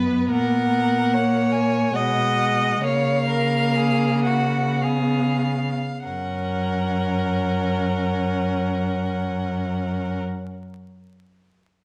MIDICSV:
0, 0, Header, 1, 5, 480
1, 0, Start_track
1, 0, Key_signature, 6, "major"
1, 0, Tempo, 815217
1, 187, Time_signature, 3, 2, 24, 8
1, 1150, Tempo, 894188
1, 2110, Tempo, 1069519
1, 2590, Tempo, 1244813
1, 3070, Tempo, 1134216
1, 4030, Tempo, 1100917
1, 5563, End_track
2, 0, Start_track
2, 0, Title_t, "Violin"
2, 0, Program_c, 0, 40
2, 184, Note_on_c, 0, 78, 67
2, 896, Note_on_c, 0, 80, 57
2, 904, Note_off_c, 0, 78, 0
2, 1139, Note_on_c, 0, 78, 69
2, 1147, Note_off_c, 0, 80, 0
2, 1623, Note_on_c, 0, 77, 75
2, 1631, Note_off_c, 0, 78, 0
2, 2332, Note_off_c, 0, 77, 0
2, 2335, Note_on_c, 0, 78, 59
2, 2594, Note_on_c, 0, 77, 53
2, 2600, Note_off_c, 0, 78, 0
2, 3070, Note_off_c, 0, 77, 0
2, 3072, Note_on_c, 0, 78, 46
2, 4846, Note_off_c, 0, 78, 0
2, 5563, End_track
3, 0, Start_track
3, 0, Title_t, "Violin"
3, 0, Program_c, 1, 40
3, 0, Note_on_c, 1, 71, 51
3, 181, Note_off_c, 1, 71, 0
3, 185, Note_on_c, 1, 70, 54
3, 668, Note_on_c, 1, 73, 62
3, 677, Note_off_c, 1, 70, 0
3, 1152, Note_on_c, 1, 75, 62
3, 1160, Note_off_c, 1, 73, 0
3, 1620, Note_off_c, 1, 75, 0
3, 1626, Note_on_c, 1, 73, 61
3, 1859, Note_off_c, 1, 73, 0
3, 1866, Note_on_c, 1, 70, 51
3, 2114, Note_on_c, 1, 68, 52
3, 2121, Note_off_c, 1, 70, 0
3, 2344, Note_on_c, 1, 66, 45
3, 2351, Note_off_c, 1, 68, 0
3, 2598, Note_on_c, 1, 68, 43
3, 2604, Note_off_c, 1, 66, 0
3, 2838, Note_off_c, 1, 68, 0
3, 3081, Note_on_c, 1, 70, 40
3, 4850, Note_off_c, 1, 70, 0
3, 5563, End_track
4, 0, Start_track
4, 0, Title_t, "Viola"
4, 0, Program_c, 2, 41
4, 0, Note_on_c, 2, 59, 53
4, 668, Note_on_c, 2, 58, 47
4, 676, Note_off_c, 2, 59, 0
4, 1147, Note_off_c, 2, 58, 0
4, 1150, Note_on_c, 2, 56, 53
4, 1625, Note_on_c, 2, 58, 54
4, 1633, Note_off_c, 2, 56, 0
4, 2595, Note_on_c, 2, 59, 46
4, 2601, Note_off_c, 2, 58, 0
4, 2965, Note_off_c, 2, 59, 0
4, 3075, Note_on_c, 2, 61, 39
4, 4847, Note_off_c, 2, 61, 0
4, 5563, End_track
5, 0, Start_track
5, 0, Title_t, "Cello"
5, 0, Program_c, 3, 42
5, 0, Note_on_c, 3, 42, 55
5, 164, Note_off_c, 3, 42, 0
5, 185, Note_on_c, 3, 46, 50
5, 1130, Note_off_c, 3, 46, 0
5, 1153, Note_on_c, 3, 47, 49
5, 1611, Note_off_c, 3, 47, 0
5, 1622, Note_on_c, 3, 49, 53
5, 2948, Note_off_c, 3, 49, 0
5, 3073, Note_on_c, 3, 42, 46
5, 4846, Note_off_c, 3, 42, 0
5, 5563, End_track
0, 0, End_of_file